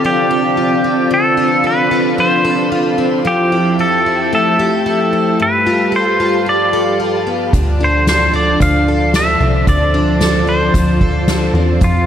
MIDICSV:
0, 0, Header, 1, 6, 480
1, 0, Start_track
1, 0, Tempo, 535714
1, 991, Time_signature, 4, 2, 24, 8
1, 10808, End_track
2, 0, Start_track
2, 0, Title_t, "String machine"
2, 0, Program_c, 0, 50
2, 0, Note_on_c, 0, 60, 58
2, 0, Note_on_c, 0, 65, 68
2, 0, Note_on_c, 0, 74, 58
2, 0, Note_on_c, 0, 81, 78
2, 972, Note_off_c, 0, 81, 0
2, 990, Note_on_c, 0, 83, 77
2, 2874, Note_off_c, 0, 60, 0
2, 2874, Note_off_c, 0, 65, 0
2, 2874, Note_off_c, 0, 74, 0
2, 2891, Note_off_c, 0, 83, 0
2, 2908, Note_on_c, 0, 76, 64
2, 2908, Note_on_c, 0, 81, 77
2, 2909, Note_on_c, 0, 53, 68
2, 2911, Note_on_c, 0, 79, 63
2, 4810, Note_off_c, 0, 76, 0
2, 4811, Note_off_c, 0, 53, 0
2, 4812, Note_off_c, 0, 79, 0
2, 4828, Note_on_c, 0, 77, 65
2, 4830, Note_on_c, 0, 67, 71
2, 4830, Note_on_c, 0, 83, 80
2, 6730, Note_off_c, 0, 77, 0
2, 6731, Note_off_c, 0, 67, 0
2, 6731, Note_off_c, 0, 83, 0
2, 6740, Note_on_c, 0, 53, 75
2, 6742, Note_on_c, 0, 74, 66
2, 6744, Note_on_c, 0, 84, 71
2, 10551, Note_off_c, 0, 74, 0
2, 10551, Note_off_c, 0, 84, 0
2, 10581, Note_on_c, 0, 79, 61
2, 10587, Note_on_c, 0, 76, 58
2, 10808, Note_off_c, 0, 53, 0
2, 10808, Note_off_c, 0, 76, 0
2, 10808, Note_off_c, 0, 79, 0
2, 10808, Note_off_c, 0, 81, 0
2, 10808, End_track
3, 0, Start_track
3, 0, Title_t, "Pedal steel guitar"
3, 0, Program_c, 1, 26
3, 52, Note_on_c, 1, 67, 70
3, 1016, Note_off_c, 1, 67, 0
3, 1020, Note_on_c, 1, 69, 79
3, 1494, Note_on_c, 1, 71, 78
3, 1499, Note_off_c, 1, 69, 0
3, 1969, Note_off_c, 1, 71, 0
3, 1972, Note_on_c, 1, 72, 75
3, 2408, Note_off_c, 1, 72, 0
3, 2933, Note_on_c, 1, 67, 68
3, 3410, Note_on_c, 1, 69, 66
3, 3416, Note_off_c, 1, 67, 0
3, 3885, Note_off_c, 1, 69, 0
3, 3895, Note_on_c, 1, 69, 74
3, 4857, Note_off_c, 1, 69, 0
3, 4860, Note_on_c, 1, 71, 76
3, 5337, Note_off_c, 1, 71, 0
3, 5340, Note_on_c, 1, 72, 83
3, 5813, Note_off_c, 1, 72, 0
3, 5816, Note_on_c, 1, 74, 77
3, 6251, Note_off_c, 1, 74, 0
3, 7028, Note_on_c, 1, 72, 75
3, 7239, Note_off_c, 1, 72, 0
3, 7250, Note_on_c, 1, 72, 79
3, 7485, Note_off_c, 1, 72, 0
3, 7489, Note_on_c, 1, 74, 77
3, 7723, Note_off_c, 1, 74, 0
3, 7726, Note_on_c, 1, 77, 90
3, 8203, Note_off_c, 1, 77, 0
3, 8207, Note_on_c, 1, 76, 92
3, 8676, Note_off_c, 1, 76, 0
3, 8680, Note_on_c, 1, 74, 75
3, 9396, Note_on_c, 1, 72, 56
3, 9417, Note_off_c, 1, 74, 0
3, 10318, Note_off_c, 1, 72, 0
3, 10611, Note_on_c, 1, 65, 79
3, 10808, Note_off_c, 1, 65, 0
3, 10808, End_track
4, 0, Start_track
4, 0, Title_t, "Twelve-string acoustic guitar"
4, 0, Program_c, 2, 25
4, 0, Note_on_c, 2, 50, 65
4, 0, Note_on_c, 2, 65, 51
4, 0, Note_on_c, 2, 69, 57
4, 40, Note_on_c, 2, 53, 64
4, 271, Note_off_c, 2, 69, 0
4, 275, Note_on_c, 2, 69, 63
4, 509, Note_off_c, 2, 65, 0
4, 512, Note_on_c, 2, 65, 53
4, 755, Note_on_c, 2, 60, 50
4, 980, Note_off_c, 2, 50, 0
4, 991, Note_on_c, 2, 50, 69
4, 1227, Note_off_c, 2, 65, 0
4, 1230, Note_on_c, 2, 65, 56
4, 1464, Note_off_c, 2, 69, 0
4, 1468, Note_on_c, 2, 69, 56
4, 1710, Note_off_c, 2, 65, 0
4, 1714, Note_on_c, 2, 65, 53
4, 1952, Note_off_c, 2, 53, 0
4, 1955, Note_on_c, 2, 53, 63
4, 2188, Note_off_c, 2, 69, 0
4, 2191, Note_on_c, 2, 69, 63
4, 2432, Note_off_c, 2, 65, 0
4, 2436, Note_on_c, 2, 65, 57
4, 2667, Note_off_c, 2, 60, 0
4, 2670, Note_on_c, 2, 60, 49
4, 2907, Note_off_c, 2, 50, 0
4, 2910, Note_off_c, 2, 53, 0
4, 2910, Note_on_c, 2, 53, 77
4, 3152, Note_off_c, 2, 65, 0
4, 3155, Note_on_c, 2, 64, 60
4, 3394, Note_off_c, 2, 69, 0
4, 3397, Note_on_c, 2, 67, 54
4, 3630, Note_off_c, 2, 64, 0
4, 3641, Note_on_c, 2, 64, 51
4, 3876, Note_on_c, 2, 57, 61
4, 4113, Note_off_c, 2, 67, 0
4, 4116, Note_on_c, 2, 67, 57
4, 4344, Note_off_c, 2, 64, 0
4, 4354, Note_on_c, 2, 64, 56
4, 4592, Note_off_c, 2, 60, 0
4, 4595, Note_on_c, 2, 60, 51
4, 4835, Note_on_c, 2, 43, 72
4, 4862, Note_off_c, 2, 53, 0
4, 4881, Note_off_c, 2, 60, 0
4, 4881, Note_off_c, 2, 64, 0
4, 5076, Note_on_c, 2, 65, 52
4, 5103, Note_off_c, 2, 67, 0
4, 5304, Note_on_c, 2, 69, 55
4, 5551, Note_off_c, 2, 65, 0
4, 5555, Note_on_c, 2, 65, 55
4, 5787, Note_off_c, 2, 57, 0
4, 5791, Note_on_c, 2, 53, 65
4, 6029, Note_off_c, 2, 69, 0
4, 6032, Note_on_c, 2, 69, 58
4, 6267, Note_off_c, 2, 65, 0
4, 6270, Note_on_c, 2, 65, 59
4, 6511, Note_on_c, 2, 59, 49
4, 6753, Note_off_c, 2, 43, 0
4, 6753, Note_on_c, 2, 50, 70
4, 6799, Note_off_c, 2, 59, 0
4, 6990, Note_off_c, 2, 65, 0
4, 6994, Note_on_c, 2, 62, 53
4, 7229, Note_off_c, 2, 69, 0
4, 7233, Note_on_c, 2, 69, 54
4, 7458, Note_off_c, 2, 62, 0
4, 7469, Note_on_c, 2, 62, 56
4, 7708, Note_off_c, 2, 53, 0
4, 7712, Note_on_c, 2, 53, 65
4, 7956, Note_off_c, 2, 69, 0
4, 7960, Note_on_c, 2, 69, 59
4, 8180, Note_off_c, 2, 62, 0
4, 8191, Note_on_c, 2, 62, 52
4, 8430, Note_on_c, 2, 60, 50
4, 8656, Note_off_c, 2, 50, 0
4, 8667, Note_on_c, 2, 50, 63
4, 8895, Note_off_c, 2, 62, 0
4, 8906, Note_on_c, 2, 62, 57
4, 9142, Note_off_c, 2, 69, 0
4, 9146, Note_on_c, 2, 69, 62
4, 9372, Note_off_c, 2, 62, 0
4, 9383, Note_on_c, 2, 62, 53
4, 9624, Note_off_c, 2, 53, 0
4, 9627, Note_on_c, 2, 53, 66
4, 9863, Note_off_c, 2, 69, 0
4, 9867, Note_on_c, 2, 69, 65
4, 10099, Note_off_c, 2, 62, 0
4, 10110, Note_on_c, 2, 62, 59
4, 10344, Note_off_c, 2, 60, 0
4, 10348, Note_on_c, 2, 60, 50
4, 10579, Note_off_c, 2, 50, 0
4, 10582, Note_off_c, 2, 53, 0
4, 10582, Note_on_c, 2, 53, 71
4, 10638, Note_off_c, 2, 62, 0
4, 10808, Note_off_c, 2, 53, 0
4, 10808, Note_off_c, 2, 60, 0
4, 10808, Note_off_c, 2, 69, 0
4, 10808, End_track
5, 0, Start_track
5, 0, Title_t, "Analog synth bass"
5, 0, Program_c, 3, 38
5, 6749, Note_on_c, 3, 38, 100
5, 7674, Note_off_c, 3, 38, 0
5, 7707, Note_on_c, 3, 38, 98
5, 8393, Note_off_c, 3, 38, 0
5, 8424, Note_on_c, 3, 36, 83
5, 8655, Note_off_c, 3, 36, 0
5, 8666, Note_on_c, 3, 38, 101
5, 9592, Note_off_c, 3, 38, 0
5, 9622, Note_on_c, 3, 38, 98
5, 10310, Note_off_c, 3, 38, 0
5, 10337, Note_on_c, 3, 40, 84
5, 10571, Note_off_c, 3, 40, 0
5, 10584, Note_on_c, 3, 41, 103
5, 10808, Note_off_c, 3, 41, 0
5, 10808, End_track
6, 0, Start_track
6, 0, Title_t, "Drums"
6, 6749, Note_on_c, 9, 36, 83
6, 6751, Note_on_c, 9, 42, 67
6, 6839, Note_off_c, 9, 36, 0
6, 6841, Note_off_c, 9, 42, 0
6, 7231, Note_on_c, 9, 38, 81
6, 7233, Note_on_c, 9, 42, 59
6, 7320, Note_off_c, 9, 38, 0
6, 7323, Note_off_c, 9, 42, 0
6, 7709, Note_on_c, 9, 36, 70
6, 7717, Note_on_c, 9, 42, 66
6, 7799, Note_off_c, 9, 36, 0
6, 7807, Note_off_c, 9, 42, 0
6, 8187, Note_on_c, 9, 38, 99
6, 8188, Note_on_c, 9, 42, 73
6, 8276, Note_off_c, 9, 38, 0
6, 8278, Note_off_c, 9, 42, 0
6, 8667, Note_on_c, 9, 36, 88
6, 8668, Note_on_c, 9, 42, 57
6, 8757, Note_off_c, 9, 36, 0
6, 8758, Note_off_c, 9, 42, 0
6, 9144, Note_on_c, 9, 38, 87
6, 9147, Note_on_c, 9, 42, 62
6, 9234, Note_off_c, 9, 38, 0
6, 9236, Note_off_c, 9, 42, 0
6, 9624, Note_on_c, 9, 36, 74
6, 9632, Note_on_c, 9, 42, 64
6, 9714, Note_off_c, 9, 36, 0
6, 9721, Note_off_c, 9, 42, 0
6, 9865, Note_on_c, 9, 36, 84
6, 9954, Note_off_c, 9, 36, 0
6, 10103, Note_on_c, 9, 38, 92
6, 10105, Note_on_c, 9, 42, 74
6, 10193, Note_off_c, 9, 38, 0
6, 10195, Note_off_c, 9, 42, 0
6, 10585, Note_on_c, 9, 36, 94
6, 10586, Note_on_c, 9, 42, 63
6, 10675, Note_off_c, 9, 36, 0
6, 10675, Note_off_c, 9, 42, 0
6, 10808, End_track
0, 0, End_of_file